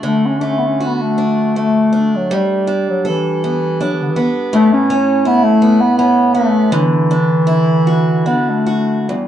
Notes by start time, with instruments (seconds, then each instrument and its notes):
Already playing: steel-string acoustic guitar A3 D4 F#4
0.03 steel-string acoustic guitar D3, bass clarinet A3
0.26 bass clarinet C#4
0.40 steel-string acoustic guitar A3, bass clarinet D4
0.44 bass clarinet C#4
0.59 bass clarinet B3
0.66 bass clarinet C#4
0.80 steel-string acoustic guitar F#4
0.86 bass clarinet B3
0.95 bass clarinet B3
1.01 bass clarinet A3
1.18 steel-string acoustic guitar D4
1.56 steel-string acoustic guitar A3, bass clarinet A3
1.93 steel-string acoustic guitar D4
2.16 bass clarinet F#3
2.31 steel-string acoustic guitar G3
2.35 bass clarinet G3
2.67 steel-string acoustic guitar D4
2.90 bass clarinet F#3
3.05 steel-string acoustic guitar A4
3.09 bass clarinet E3
3.44 steel-string acoustic guitar B3
3.81 bass clarinet F#3, steel-string acoustic guitar D4
3.93 bass clarinet E3
4.02 bass clarinet D3
4.10 bass clarinet E3
4.16 steel-string acoustic guitar B3
4.53 steel-string acoustic guitar A2, bass clarinet A3
4.73 bass clarinet C#4
4.90 steel-string acoustic guitar C#4
5.25 bass clarinet B3, steel-string acoustic guitar E4
5.44 bass clarinet A3
5.62 steel-string acoustic guitar B3
5.81 bass clarinet B3
5.98 bass clarinet B3, steel-string acoustic guitar C#4
6.34 bass clarinet A3, steel-string acoustic guitar B3
6.72 steel-string acoustic guitar D3, bass clarinet E3
7.11 steel-string acoustic guitar D4
7.47 steel-string acoustic guitar E4
7.87 steel-string acoustic guitar F#4
8.26 bass clarinet B3, steel-string acoustic guitar D4
8.49 bass clarinet A3
8.66 steel-string acoustic guitar F#4
9.01 bass clarinet A3
9.08 steel-string acoustic guitar E2, bass clarinet G3